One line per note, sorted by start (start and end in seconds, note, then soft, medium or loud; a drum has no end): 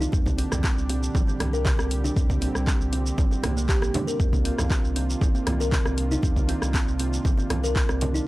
0.01 0.12 D#4 medium
0.01 shaker medium
0.12 0.45 C2 medium
0.12 4.16 A#2 medium
0.12 4.16 D3 medium
0.12 4.16 G3 medium
0.12 0.25 C4 medium
0.12 2.14 D4 medium
0.12 4.16 G4 medium
0.12 kick loud
0.12 mid tom medium
0.12 muted conga medium
0.12 shaker medium
0.26 kick medium
0.26 high conga loud
0.26 shaker soft
0.38 0.46 C4 medium
0.38 open hi-hat medium
0.38 muted conga soft
0.52 0.69 C2 loud
0.52 cross-stick medium
0.52 mid tom medium
0.52 low conga medium
0.52 shaker medium
0.63 0.71 C4 medium
0.63 kick loud
0.63 clap loud
0.63 muted conga soft
0.63 shaker medium
0.77 1.08 C2 medium
0.77 shaker soft
0.89 0.97 C4 medium
0.89 open hi-hat medium
0.89 muted conga soft
1.03 shaker medium
1.15 1.32 G1 loud
1.15 1.27 C4 medium
1.15 kick loud
1.15 low conga loud
1.15 shaker medium
1.27 1.39 C4 medium
1.27 muted conga soft
1.27 shaker soft
1.40 1.72 C2 loud
1.40 cross-stick loud
1.40 open hi-hat medium
1.40 low conga loud
1.53 1.64 A#4 medium
1.53 muted conga soft
1.53 shaker medium
1.65 kick loud
1.65 clap loud
1.65 high conga loud
1.65 shaker medium
1.78 2.10 C2 loud
1.78 1.90 C4 medium
1.78 cross-stick medium
1.78 muted conga medium
1.78 shaker soft
1.91 open hi-hat medium
2.04 2.15 D4 medium
2.04 high conga medium
2.04 shaker medium
2.16 2.48 C2 medium
2.16 4.18 C4 medium
2.16 2.29 C4 medium
2.16 kick loud
2.16 mid tom medium
2.16 muted conga medium
2.16 shaker medium
2.30 kick medium
2.30 high conga loud
2.30 shaker soft
2.41 2.49 C4 medium
2.41 open hi-hat medium
2.41 muted conga soft
2.55 2.72 C2 medium
2.55 cross-stick medium
2.55 shaker medium
2.67 2.74 C4 medium
2.67 kick loud
2.67 clap loud
2.67 muted conga soft
2.67 shaker medium
2.81 3.12 C2 medium
2.81 shaker soft
2.93 3.00 C4 medium
2.93 open hi-hat medium
2.93 muted conga soft
3.06 shaker medium
3.18 3.36 G1 loud
3.18 3.30 C4 medium
3.18 kick loud
3.18 high conga medium
3.18 low conga loud
3.18 shaker medium
3.31 3.42 C4 medium
3.31 muted conga medium
3.31 shaker soft
3.43 3.75 C2 loud
3.43 3.56 A#3 medium
3.43 cross-stick loud
3.43 open hi-hat medium
3.43 high conga medium
3.43 low conga loud
3.57 3.68 A#3 medium
3.57 muted conga soft
3.57 shaker medium
3.69 3.81 G4 medium
3.69 kick loud
3.69 clap loud
3.69 shaker medium
3.82 3.90 A#1 loud
3.82 3.94 C4 medium
3.82 cross-stick medium
3.82 muted conga soft
3.82 high conga medium
3.82 shaker soft
3.94 4.07 D4 medium
3.94 open hi-hat medium
3.94 high conga loud
3.94 low conga loud
4.07 4.18 A#4 medium
4.07 shaker medium
4.20 4.51 C2 loud
4.20 8.23 C3 medium
4.20 8.23 D#3 medium
4.20 8.23 A#3 medium
4.20 4.32 C4 medium
4.20 8.27 D4 medium
4.20 8.23 F4 medium
4.20 kick loud
4.20 mid tom medium
4.20 muted conga medium
4.20 shaker medium
4.33 kick medium
4.33 high conga loud
4.33 shaker soft
4.45 4.52 C4 medium
4.45 open hi-hat medium
4.45 muted conga soft
4.58 4.75 C2 loud
4.58 cross-stick medium
4.58 mid tom medium
4.58 low conga medium
4.58 shaker medium
4.71 4.78 C4 medium
4.71 kick loud
4.71 clap loud
4.71 muted conga soft
4.71 shaker medium
4.84 5.15 C2 medium
4.84 shaker soft
4.96 5.03 C4 medium
4.96 open hi-hat medium
4.96 muted conga soft
5.10 shaker medium
5.21 5.39 G1 loud
5.21 5.34 C4 medium
5.21 kick loud
5.21 low conga loud
5.21 shaker medium
5.35 5.46 C4 medium
5.35 muted conga soft
5.35 shaker soft
5.47 5.79 C2 loud
5.47 cross-stick medium
5.47 open hi-hat medium
5.47 low conga medium
5.60 5.71 A#4 medium
5.60 muted conga soft
5.60 shaker medium
5.72 kick loud
5.72 clap loud
5.72 high conga loud
5.72 shaker medium
5.85 6.17 C2 loud
5.85 5.97 C4 medium
5.85 cross-stick medium
5.85 muted conga soft
5.85 shaker soft
5.98 open hi-hat medium
6.11 6.22 D#4 medium
6.11 high conga medium
6.11 shaker medium
6.23 6.55 C2 loud
6.23 6.36 C4 medium
6.23 kick loud
6.23 mid tom medium
6.23 muted conga soft
6.23 shaker medium
6.36 kick medium
6.36 high conga loud
6.36 shaker soft
6.48 6.56 C4 medium
6.48 open hi-hat medium
6.48 muted conga soft
6.62 6.78 C2 loud
6.62 cross-stick medium
6.62 shaker medium
6.74 6.81 C4 medium
6.74 kick loud
6.74 clap loud
6.74 muted conga soft
6.74 shaker medium
6.87 7.18 C2 medium
6.87 shaker soft
6.99 7.07 C4 medium
6.99 open hi-hat medium
6.99 muted conga soft
7.13 shaker medium
7.25 7.42 G1 medium
7.25 7.37 C4 medium
7.25 kick loud
7.25 high conga medium
7.25 low conga loud
7.25 shaker medium
7.37 7.49 C4 medium
7.37 muted conga medium
7.37 shaker soft
7.50 7.82 C2 medium
7.50 cross-stick medium
7.50 open hi-hat medium
7.50 high conga medium
7.50 low conga loud
7.63 7.75 A#4 medium
7.63 muted conga soft
7.63 shaker medium
7.76 kick loud
7.76 clap loud
7.76 shaker medium
7.89 8.20 C2 loud
7.89 8.01 C4 medium
7.89 cross-stick medium
7.89 muted conga medium
7.89 shaker soft
8.01 open hi-hat medium
8.01 high conga loud
8.01 low conga loud
8.14 8.25 D#4 medium
8.14 shaker medium